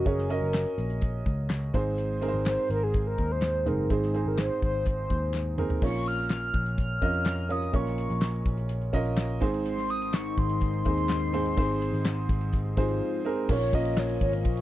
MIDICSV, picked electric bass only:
0, 0, Header, 1, 2, 480
1, 0, Start_track
1, 0, Key_signature, -5, "minor"
1, 0, Tempo, 479616
1, 61, Time_signature, 4, 2, 24, 8
1, 14623, End_track
2, 0, Start_track
2, 0, Title_t, "Picked electric bass"
2, 0, Program_c, 0, 34
2, 60, Note_on_c, 0, 30, 88
2, 395, Note_off_c, 0, 30, 0
2, 420, Note_on_c, 0, 30, 79
2, 644, Note_off_c, 0, 30, 0
2, 780, Note_on_c, 0, 34, 87
2, 1227, Note_off_c, 0, 34, 0
2, 1260, Note_on_c, 0, 37, 91
2, 1708, Note_off_c, 0, 37, 0
2, 1743, Note_on_c, 0, 32, 86
2, 2303, Note_off_c, 0, 32, 0
2, 2339, Note_on_c, 0, 32, 86
2, 2564, Note_off_c, 0, 32, 0
2, 2700, Note_on_c, 0, 32, 94
2, 3148, Note_off_c, 0, 32, 0
2, 3185, Note_on_c, 0, 39, 84
2, 3664, Note_on_c, 0, 30, 77
2, 3679, Note_off_c, 0, 39, 0
2, 3887, Note_off_c, 0, 30, 0
2, 3905, Note_on_c, 0, 32, 90
2, 4240, Note_off_c, 0, 32, 0
2, 4266, Note_on_c, 0, 32, 74
2, 4488, Note_off_c, 0, 32, 0
2, 4626, Note_on_c, 0, 32, 79
2, 5072, Note_off_c, 0, 32, 0
2, 5106, Note_on_c, 0, 39, 85
2, 5790, Note_off_c, 0, 39, 0
2, 5826, Note_on_c, 0, 34, 94
2, 6510, Note_off_c, 0, 34, 0
2, 6544, Note_on_c, 0, 34, 88
2, 6991, Note_off_c, 0, 34, 0
2, 7025, Note_on_c, 0, 41, 81
2, 7709, Note_off_c, 0, 41, 0
2, 7744, Note_on_c, 0, 34, 101
2, 8079, Note_off_c, 0, 34, 0
2, 8109, Note_on_c, 0, 34, 86
2, 8442, Note_off_c, 0, 34, 0
2, 8463, Note_on_c, 0, 34, 100
2, 8911, Note_off_c, 0, 34, 0
2, 8942, Note_on_c, 0, 34, 96
2, 9422, Note_off_c, 0, 34, 0
2, 9422, Note_on_c, 0, 32, 96
2, 10344, Note_off_c, 0, 32, 0
2, 10384, Note_on_c, 0, 32, 92
2, 10832, Note_off_c, 0, 32, 0
2, 10864, Note_on_c, 0, 39, 87
2, 11549, Note_off_c, 0, 39, 0
2, 11584, Note_on_c, 0, 32, 101
2, 11920, Note_off_c, 0, 32, 0
2, 11940, Note_on_c, 0, 32, 86
2, 12278, Note_off_c, 0, 32, 0
2, 12303, Note_on_c, 0, 32, 104
2, 12751, Note_off_c, 0, 32, 0
2, 12783, Note_on_c, 0, 32, 103
2, 13008, Note_off_c, 0, 32, 0
2, 13499, Note_on_c, 0, 34, 102
2, 14187, Note_off_c, 0, 34, 0
2, 14222, Note_on_c, 0, 32, 101
2, 14466, Note_off_c, 0, 32, 0
2, 14466, Note_on_c, 0, 34, 97
2, 14623, Note_off_c, 0, 34, 0
2, 14623, End_track
0, 0, End_of_file